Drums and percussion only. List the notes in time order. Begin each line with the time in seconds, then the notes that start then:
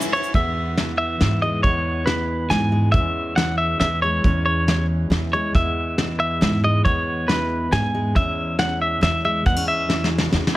0.01 shaker
0.23 shaker
0.34 kick, closed hi-hat
0.77 snare, closed hi-hat
1.21 snare, closed hi-hat
1.64 kick, closed hi-hat
2.07 snare, closed hi-hat
2.51 snare, closed hi-hat
2.94 kick, closed hi-hat
3.37 snare, closed hi-hat
3.80 snare, closed hi-hat
4.24 kick, closed hi-hat
4.68 snare, closed hi-hat
5.12 snare, closed hi-hat
5.55 kick, closed hi-hat
5.98 snare, closed hi-hat
6.42 snare, closed hi-hat
6.85 kick, closed hi-hat
7.29 snare, closed hi-hat
7.73 snare, closed hi-hat
8.16 kick, closed hi-hat
8.59 snare, closed hi-hat
9.03 snare, closed hi-hat
9.46 kick, closed hi-hat
9.90 snare
10.04 snare
10.18 snare
10.32 snare
10.47 snare